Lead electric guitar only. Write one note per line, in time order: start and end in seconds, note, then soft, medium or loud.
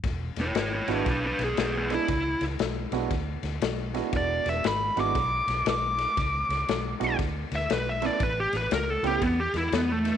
0.41 0.56 E4 medium
0.41 0.56 C#5 medium
0.59 0.73 E4 medium
0.59 0.74 C#5 medium
0.75 0.92 E4 medium
0.75 0.93 C#5 medium
0.92 1.08 D4 medium
0.92 1.08 B4 medium
1.10 1.24 D4 medium
1.10 1.25 B4 medium
1.26 1.41 D4 medium
1.26 1.44 B4 medium
1.44 1.58 B3 medium
1.44 1.59 G#4 medium
1.60 1.75 B3 medium
1.60 1.76 G#4 medium
1.77 1.92 B3 medium
1.77 1.93 G#4 medium
1.94 2.43 E4 medium
4.17 4.46 D5 medium
4.49 4.66 E5 medium
4.67 4.97 B5 medium
5.00 5.66 D6 medium
5.70 7.16 D6 medium
7.55 7.70 E5 medium
7.73 7.88 B4 medium
7.89 8.04 E5 medium
8.06 8.21 D5 medium
8.23 8.38 B4 medium
8.40 8.55 G4 medium
8.57 8.72 B4 medium
8.73 8.90 A#4 medium
8.90 9.05 A4 medium
9.07 9.22 G4 medium
9.23 9.39 B3 medium
9.40 9.56 G4 loud
9.57 9.73 E4 medium
9.74 9.92 B3 medium
9.92 10.17 A3 loud